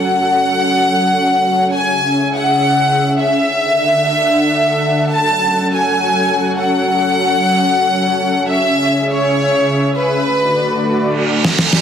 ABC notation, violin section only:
X:1
M:4/4
L:1/8
Q:"Swing 16ths" 1/4=142
K:F#m
V:1 name="Violin section"
f8 | g3 f4 e- | e8 | a3 g4 f- |
f8 | e3 c4 B- | B4 z4 |]